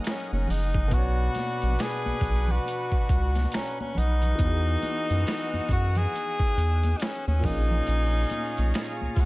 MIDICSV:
0, 0, Header, 1, 7, 480
1, 0, Start_track
1, 0, Tempo, 869565
1, 507, Time_signature, 4, 2, 24, 8
1, 5108, End_track
2, 0, Start_track
2, 0, Title_t, "Analog synth pad"
2, 0, Program_c, 0, 89
2, 0, Note_on_c, 0, 68, 78
2, 0, Note_on_c, 0, 78, 80
2, 0, Note_on_c, 0, 82, 77
2, 0, Note_on_c, 0, 87, 85
2, 486, Note_off_c, 0, 68, 0
2, 490, Note_off_c, 0, 82, 0
2, 491, Note_off_c, 0, 87, 0
2, 504, Note_on_c, 0, 85, 77
2, 505, Note_on_c, 0, 71, 76
2, 2406, Note_off_c, 0, 71, 0
2, 2406, Note_off_c, 0, 85, 0
2, 2407, Note_off_c, 0, 78, 0
2, 2427, Note_on_c, 0, 68, 83
2, 2427, Note_on_c, 0, 78, 74
2, 2427, Note_on_c, 0, 87, 74
2, 2429, Note_on_c, 0, 88, 91
2, 4090, Note_off_c, 0, 78, 0
2, 4090, Note_off_c, 0, 87, 0
2, 4091, Note_off_c, 0, 88, 0
2, 4107, Note_on_c, 0, 77, 78
2, 4108, Note_on_c, 0, 82, 73
2, 4108, Note_on_c, 0, 85, 90
2, 5108, Note_off_c, 0, 68, 0
2, 5108, Note_off_c, 0, 77, 0
2, 5108, Note_off_c, 0, 82, 0
2, 5108, Note_off_c, 0, 85, 0
2, 5108, End_track
3, 0, Start_track
3, 0, Title_t, "Horn section"
3, 0, Program_c, 1, 61
3, 0, Note_on_c, 1, 61, 75
3, 0, Note_on_c, 1, 63, 78
3, 0, Note_on_c, 1, 70, 84
3, 244, Note_off_c, 1, 61, 0
3, 244, Note_off_c, 1, 63, 0
3, 244, Note_off_c, 1, 70, 0
3, 505, Note_on_c, 1, 71, 91
3, 506, Note_on_c, 1, 62, 75
3, 506, Note_on_c, 1, 66, 75
3, 2164, Note_off_c, 1, 62, 0
3, 2164, Note_off_c, 1, 66, 0
3, 2164, Note_off_c, 1, 71, 0
3, 2426, Note_on_c, 1, 59, 72
3, 2426, Note_on_c, 1, 63, 73
3, 2426, Note_on_c, 1, 66, 79
3, 3844, Note_off_c, 1, 59, 0
3, 3844, Note_off_c, 1, 66, 0
3, 3845, Note_off_c, 1, 63, 0
3, 4106, Note_on_c, 1, 61, 63
3, 4106, Note_on_c, 1, 65, 70
3, 4106, Note_on_c, 1, 68, 78
3, 5108, Note_off_c, 1, 61, 0
3, 5108, Note_off_c, 1, 65, 0
3, 5108, Note_off_c, 1, 68, 0
3, 5108, End_track
4, 0, Start_track
4, 0, Title_t, "Grand piano"
4, 0, Program_c, 2, 0
4, 0, Control_c, 2, 64, 127
4, 0, Note_on_c, 2, 54, 75
4, 0, Note_on_c, 2, 61, 68
4, 0, Note_on_c, 2, 63, 68
4, 0, Note_on_c, 2, 68, 68
4, 0, Note_on_c, 2, 70, 86
4, 475, Note_off_c, 2, 54, 0
4, 482, Note_off_c, 2, 61, 0
4, 486, Note_on_c, 2, 47, 73
4, 489, Note_off_c, 2, 63, 0
4, 495, Note_off_c, 2, 68, 0
4, 499, Note_on_c, 2, 59, 66
4, 501, Note_off_c, 2, 70, 0
4, 513, Note_on_c, 2, 61, 52
4, 515, Control_c, 2, 64, 0
4, 526, Note_on_c, 2, 66, 66
4, 538, Note_on_c, 2, 73, 81
4, 548, Note_on_c, 2, 74, 68
4, 553, Note_off_c, 2, 61, 0
4, 616, Control_c, 2, 64, 127
4, 1953, Note_on_c, 2, 82, 77
4, 2173, Note_off_c, 2, 82, 0
4, 2192, Note_on_c, 2, 78, 60
4, 2395, Note_off_c, 2, 47, 0
4, 2401, Note_off_c, 2, 59, 0
4, 2404, Note_on_c, 2, 52, 72
4, 2413, Note_off_c, 2, 78, 0
4, 2414, Note_off_c, 2, 66, 0
4, 2418, Note_on_c, 2, 59, 65
4, 2420, Note_off_c, 2, 73, 0
4, 2426, Note_off_c, 2, 74, 0
4, 2432, Note_on_c, 2, 63, 61
4, 2433, Control_c, 2, 64, 0
4, 2445, Note_on_c, 2, 66, 62
4, 2459, Note_on_c, 2, 68, 77
4, 2535, Control_c, 2, 64, 127
4, 4073, Note_off_c, 2, 52, 0
4, 4080, Note_off_c, 2, 59, 0
4, 4084, Note_on_c, 2, 46, 57
4, 4087, Note_off_c, 2, 63, 0
4, 4094, Note_off_c, 2, 66, 0
4, 4098, Note_on_c, 2, 58, 55
4, 4101, Note_off_c, 2, 68, 0
4, 4110, Note_on_c, 2, 61, 56
4, 4113, Control_c, 2, 64, 0
4, 4125, Note_on_c, 2, 65, 57
4, 4138, Note_on_c, 2, 68, 68
4, 4215, Control_c, 2, 64, 127
4, 5108, Note_off_c, 2, 46, 0
4, 5108, Note_off_c, 2, 58, 0
4, 5108, Note_off_c, 2, 61, 0
4, 5108, Note_off_c, 2, 65, 0
4, 5108, Note_off_c, 2, 68, 0
4, 5108, End_track
5, 0, Start_track
5, 0, Title_t, "Tenor saxophone"
5, 0, Program_c, 3, 66
5, 42, Note_on_c, 3, 61, 80
5, 170, Note_off_c, 3, 61, 0
5, 183, Note_on_c, 3, 61, 76
5, 280, Note_on_c, 3, 63, 90
5, 288, Note_off_c, 3, 61, 0
5, 516, Note_on_c, 3, 66, 109
5, 525, Note_off_c, 3, 63, 0
5, 1001, Note_on_c, 3, 68, 94
5, 1009, Note_off_c, 3, 66, 0
5, 1387, Note_on_c, 3, 66, 89
5, 1396, Note_off_c, 3, 68, 0
5, 1954, Note_off_c, 3, 66, 0
5, 1958, Note_on_c, 3, 61, 84
5, 2088, Note_off_c, 3, 61, 0
5, 2104, Note_on_c, 3, 61, 85
5, 2197, Note_on_c, 3, 63, 115
5, 2205, Note_off_c, 3, 61, 0
5, 3152, Note_off_c, 3, 63, 0
5, 3160, Note_on_c, 3, 66, 102
5, 3300, Note_on_c, 3, 68, 113
5, 3309, Note_off_c, 3, 66, 0
5, 3848, Note_on_c, 3, 63, 72
5, 3856, Note_off_c, 3, 68, 0
5, 3872, Note_on_c, 3, 61, 88
5, 3880, Note_off_c, 3, 63, 0
5, 4015, Note_off_c, 3, 61, 0
5, 4018, Note_on_c, 3, 61, 89
5, 4112, Note_on_c, 3, 63, 115
5, 4120, Note_off_c, 3, 61, 0
5, 4940, Note_off_c, 3, 63, 0
5, 5052, Note_on_c, 3, 65, 64
5, 5077, Note_on_c, 3, 66, 101
5, 5085, Note_off_c, 3, 65, 0
5, 5108, Note_off_c, 3, 66, 0
5, 5108, End_track
6, 0, Start_track
6, 0, Title_t, "Analog synth bass"
6, 0, Program_c, 4, 38
6, 178, Note_on_c, 4, 30, 85
6, 256, Note_off_c, 4, 30, 0
6, 271, Note_on_c, 4, 30, 90
6, 507, Note_on_c, 4, 35, 113
6, 515, Note_off_c, 4, 30, 0
6, 711, Note_off_c, 4, 35, 0
6, 899, Note_on_c, 4, 34, 89
6, 977, Note_off_c, 4, 34, 0
6, 1139, Note_on_c, 4, 35, 48
6, 1175, Note_off_c, 4, 35, 0
6, 1224, Note_on_c, 4, 35, 83
6, 1430, Note_off_c, 4, 35, 0
6, 1710, Note_on_c, 4, 37, 96
6, 1913, Note_off_c, 4, 37, 0
6, 2193, Note_on_c, 4, 35, 92
6, 2395, Note_off_c, 4, 35, 0
6, 2427, Note_on_c, 4, 40, 101
6, 2631, Note_off_c, 4, 40, 0
6, 2817, Note_on_c, 4, 42, 83
6, 2895, Note_off_c, 4, 42, 0
6, 3055, Note_on_c, 4, 42, 46
6, 3092, Note_off_c, 4, 42, 0
6, 3142, Note_on_c, 4, 42, 84
6, 3348, Note_off_c, 4, 42, 0
6, 3628, Note_on_c, 4, 40, 92
6, 3832, Note_off_c, 4, 40, 0
6, 4015, Note_on_c, 4, 39, 104
6, 4095, Note_off_c, 4, 39, 0
6, 4108, Note_on_c, 4, 34, 95
6, 4312, Note_off_c, 4, 34, 0
6, 4350, Note_on_c, 4, 34, 111
6, 4553, Note_off_c, 4, 34, 0
6, 4738, Note_on_c, 4, 35, 86
6, 4816, Note_off_c, 4, 35, 0
6, 4977, Note_on_c, 4, 37, 47
6, 5014, Note_off_c, 4, 37, 0
6, 5062, Note_on_c, 4, 37, 86
6, 5108, Note_off_c, 4, 37, 0
6, 5108, End_track
7, 0, Start_track
7, 0, Title_t, "Drums"
7, 24, Note_on_c, 9, 42, 81
7, 38, Note_on_c, 9, 26, 81
7, 39, Note_on_c, 9, 38, 110
7, 79, Note_off_c, 9, 42, 0
7, 93, Note_off_c, 9, 26, 0
7, 95, Note_off_c, 9, 38, 0
7, 182, Note_on_c, 9, 63, 66
7, 238, Note_off_c, 9, 63, 0
7, 262, Note_on_c, 9, 62, 36
7, 262, Note_on_c, 9, 64, 74
7, 277, Note_on_c, 9, 46, 43
7, 318, Note_off_c, 9, 62, 0
7, 318, Note_off_c, 9, 64, 0
7, 332, Note_off_c, 9, 46, 0
7, 411, Note_on_c, 9, 36, 94
7, 418, Note_on_c, 9, 64, 53
7, 466, Note_off_c, 9, 36, 0
7, 474, Note_off_c, 9, 64, 0
7, 504, Note_on_c, 9, 36, 105
7, 504, Note_on_c, 9, 42, 84
7, 559, Note_off_c, 9, 36, 0
7, 559, Note_off_c, 9, 42, 0
7, 743, Note_on_c, 9, 42, 67
7, 749, Note_on_c, 9, 63, 69
7, 758, Note_on_c, 9, 38, 33
7, 798, Note_off_c, 9, 42, 0
7, 804, Note_off_c, 9, 63, 0
7, 814, Note_off_c, 9, 38, 0
7, 894, Note_on_c, 9, 42, 35
7, 905, Note_on_c, 9, 63, 60
7, 949, Note_off_c, 9, 42, 0
7, 960, Note_off_c, 9, 63, 0
7, 987, Note_on_c, 9, 42, 91
7, 993, Note_on_c, 9, 26, 83
7, 995, Note_on_c, 9, 38, 102
7, 1042, Note_off_c, 9, 42, 0
7, 1049, Note_off_c, 9, 26, 0
7, 1050, Note_off_c, 9, 38, 0
7, 1136, Note_on_c, 9, 63, 67
7, 1191, Note_off_c, 9, 63, 0
7, 1221, Note_on_c, 9, 36, 93
7, 1233, Note_on_c, 9, 42, 59
7, 1276, Note_off_c, 9, 36, 0
7, 1288, Note_off_c, 9, 42, 0
7, 1369, Note_on_c, 9, 64, 76
7, 1424, Note_off_c, 9, 64, 0
7, 1466, Note_on_c, 9, 62, 28
7, 1479, Note_on_c, 9, 42, 83
7, 1522, Note_off_c, 9, 62, 0
7, 1534, Note_off_c, 9, 42, 0
7, 1610, Note_on_c, 9, 36, 91
7, 1666, Note_off_c, 9, 36, 0
7, 1707, Note_on_c, 9, 36, 94
7, 1711, Note_on_c, 9, 42, 68
7, 1763, Note_off_c, 9, 36, 0
7, 1767, Note_off_c, 9, 42, 0
7, 1851, Note_on_c, 9, 42, 38
7, 1854, Note_on_c, 9, 63, 62
7, 1860, Note_on_c, 9, 38, 38
7, 1906, Note_off_c, 9, 42, 0
7, 1909, Note_off_c, 9, 63, 0
7, 1916, Note_off_c, 9, 38, 0
7, 1942, Note_on_c, 9, 42, 82
7, 1956, Note_on_c, 9, 26, 88
7, 1957, Note_on_c, 9, 38, 112
7, 1997, Note_off_c, 9, 42, 0
7, 2011, Note_off_c, 9, 26, 0
7, 2012, Note_off_c, 9, 38, 0
7, 2100, Note_on_c, 9, 63, 67
7, 2155, Note_off_c, 9, 63, 0
7, 2179, Note_on_c, 9, 62, 35
7, 2179, Note_on_c, 9, 64, 69
7, 2196, Note_on_c, 9, 42, 65
7, 2234, Note_off_c, 9, 62, 0
7, 2234, Note_off_c, 9, 64, 0
7, 2251, Note_off_c, 9, 42, 0
7, 2328, Note_on_c, 9, 42, 33
7, 2332, Note_on_c, 9, 64, 60
7, 2383, Note_off_c, 9, 42, 0
7, 2387, Note_off_c, 9, 64, 0
7, 2423, Note_on_c, 9, 42, 85
7, 2424, Note_on_c, 9, 36, 116
7, 2478, Note_off_c, 9, 42, 0
7, 2479, Note_off_c, 9, 36, 0
7, 2663, Note_on_c, 9, 42, 64
7, 2665, Note_on_c, 9, 62, 31
7, 2665, Note_on_c, 9, 63, 62
7, 2719, Note_off_c, 9, 42, 0
7, 2720, Note_off_c, 9, 62, 0
7, 2720, Note_off_c, 9, 63, 0
7, 2814, Note_on_c, 9, 42, 33
7, 2821, Note_on_c, 9, 63, 62
7, 2869, Note_off_c, 9, 42, 0
7, 2876, Note_off_c, 9, 63, 0
7, 2908, Note_on_c, 9, 42, 84
7, 2911, Note_on_c, 9, 62, 26
7, 2915, Note_on_c, 9, 26, 84
7, 2916, Note_on_c, 9, 38, 101
7, 2964, Note_off_c, 9, 42, 0
7, 2966, Note_off_c, 9, 62, 0
7, 2970, Note_off_c, 9, 26, 0
7, 2971, Note_off_c, 9, 38, 0
7, 3054, Note_on_c, 9, 63, 65
7, 3109, Note_off_c, 9, 63, 0
7, 3140, Note_on_c, 9, 36, 97
7, 3151, Note_on_c, 9, 42, 55
7, 3151, Note_on_c, 9, 62, 31
7, 3195, Note_off_c, 9, 36, 0
7, 3206, Note_off_c, 9, 62, 0
7, 3207, Note_off_c, 9, 42, 0
7, 3286, Note_on_c, 9, 42, 33
7, 3290, Note_on_c, 9, 64, 75
7, 3341, Note_off_c, 9, 42, 0
7, 3345, Note_off_c, 9, 64, 0
7, 3386, Note_on_c, 9, 62, 30
7, 3398, Note_on_c, 9, 42, 81
7, 3442, Note_off_c, 9, 62, 0
7, 3453, Note_off_c, 9, 42, 0
7, 3530, Note_on_c, 9, 36, 101
7, 3585, Note_off_c, 9, 36, 0
7, 3633, Note_on_c, 9, 42, 70
7, 3688, Note_off_c, 9, 42, 0
7, 3773, Note_on_c, 9, 42, 41
7, 3776, Note_on_c, 9, 63, 62
7, 3828, Note_off_c, 9, 42, 0
7, 3831, Note_off_c, 9, 63, 0
7, 3862, Note_on_c, 9, 42, 84
7, 3868, Note_on_c, 9, 62, 29
7, 3876, Note_on_c, 9, 26, 80
7, 3877, Note_on_c, 9, 38, 114
7, 3917, Note_off_c, 9, 42, 0
7, 3923, Note_off_c, 9, 62, 0
7, 3931, Note_off_c, 9, 26, 0
7, 3933, Note_off_c, 9, 38, 0
7, 4019, Note_on_c, 9, 63, 62
7, 4074, Note_off_c, 9, 63, 0
7, 4101, Note_on_c, 9, 62, 38
7, 4101, Note_on_c, 9, 64, 73
7, 4106, Note_on_c, 9, 36, 103
7, 4116, Note_on_c, 9, 46, 46
7, 4156, Note_off_c, 9, 62, 0
7, 4156, Note_off_c, 9, 64, 0
7, 4161, Note_off_c, 9, 36, 0
7, 4171, Note_off_c, 9, 46, 0
7, 4255, Note_on_c, 9, 64, 64
7, 4310, Note_off_c, 9, 64, 0
7, 4342, Note_on_c, 9, 42, 83
7, 4398, Note_off_c, 9, 42, 0
7, 4580, Note_on_c, 9, 42, 70
7, 4587, Note_on_c, 9, 62, 33
7, 4587, Note_on_c, 9, 63, 64
7, 4635, Note_off_c, 9, 42, 0
7, 4643, Note_off_c, 9, 62, 0
7, 4643, Note_off_c, 9, 63, 0
7, 4732, Note_on_c, 9, 42, 34
7, 4743, Note_on_c, 9, 63, 57
7, 4787, Note_off_c, 9, 42, 0
7, 4798, Note_off_c, 9, 63, 0
7, 4825, Note_on_c, 9, 42, 84
7, 4831, Note_on_c, 9, 26, 84
7, 4832, Note_on_c, 9, 38, 108
7, 4833, Note_on_c, 9, 62, 24
7, 4880, Note_off_c, 9, 42, 0
7, 4886, Note_off_c, 9, 26, 0
7, 4888, Note_off_c, 9, 38, 0
7, 4888, Note_off_c, 9, 62, 0
7, 4976, Note_on_c, 9, 63, 68
7, 5031, Note_off_c, 9, 63, 0
7, 5059, Note_on_c, 9, 36, 98
7, 5070, Note_on_c, 9, 42, 56
7, 5070, Note_on_c, 9, 62, 33
7, 5108, Note_off_c, 9, 36, 0
7, 5108, Note_off_c, 9, 42, 0
7, 5108, Note_off_c, 9, 62, 0
7, 5108, End_track
0, 0, End_of_file